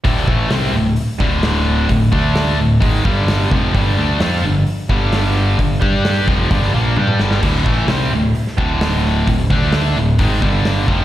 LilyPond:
<<
  \new Staff \with { instrumentName = "Distorted electric guitar" } { \clef bass \time 4/4 \key d \minor \tempo 4 = 130 <d, a, d>8 <a, e a>8 <c g c'>8 <d, a,>8 r8 <d, a, d>4. | <d, a,>8 <d a d'>4 <d, a,>8 <gis, ees gis>8 <g, d g>4 <f, c f>8 | <g, d g>8 <d a d'>8 <f c' f'>8 <g, d>8 r8 <g, d g>4. | <g, d>8 <g d' g'>4 <f, c f>8 <g, d g>8 <bes, f bes>8 <g d' g'>8 <g, d g>8 |
<d, a, d>8 <a, e a>8 <c g c'>8 <d, a,>8 r8 <d, a, d>4. | <d, a,>8 <d a d'>4 <d, a,>8 <gis, ees gis>8 <g, d g>4 <f, c f>8 | }
  \new Staff \with { instrumentName = "Distorted electric guitar" } { \clef bass \time 4/4 \key d \minor <d, a, d>8 <a, e a>8 <c g c'>8 <d, a,>8 r8 <d, a, d>4. | <d, a,>8 <d a d'>4 <d, a,>8 <gis, ees gis>8 <g, d g>4 <f, c f>8 | <g, d g>8 <d a d'>8 <f c' f'>8 <g, d>8 r8 <g, d g>4. | <g, d>8 <g d' g'>4 <f, c f>8 <g, d g>8 <bes, f bes>8 <g d' g'>8 <g, d g>8 |
<d, a, d>8 <a, e a>8 <c g c'>8 <d, a,>8 r8 <d, a, d>4. | <d, a,>8 <d a d'>4 <d, a,>8 <gis, ees gis>8 <g, d g>4 <f, c f>8 | }
  \new Staff \with { instrumentName = "Picked electric bass" } { \clef bass \time 4/4 \key d \minor d,,8 a,,8 c,8 d,,8 r8 d,,4. | d,,8 d,4 d,,8 gis,,8 g,,4 f,,8 | g,,8 d,8 f,8 g,,8 r8 g,,4. | g,,8 g,4 f,,8 g,,8 bes,,8 g,8 g,,8 |
d,,8 a,,8 c,8 d,,8 r8 d,,4. | d,,8 d,4 d,,8 gis,,8 g,,4 f,,8 | }
  \new DrumStaff \with { instrumentName = "Drums" } \drummode { \time 4/4 <hho bd>8 bd8 <hho sn>4 hho8 bd8 <hho sn>4 | <hho bd>8 bd8 <hho sn>4 <hho bd>16 sn16 bd8 <hho sn>8 bd8 | <hho bd>4 <hho sn>4 hho8 bd8 <hho sn>8 sn8 | <hho bd>8 bd8 <hho sn>8 bd8 <hho bd>16 sn8. tommh16 toml16 sn16 sn16 |
<cymc hho bd>8 bd8 <hho sn>4 hho16 sn16 bd8 <hho sn>8 sn8 | <hho bd>8 bd8 <hho sn>4 <hho bd>8 bd8 <hho sn>8 <bd sn>8 | }
>>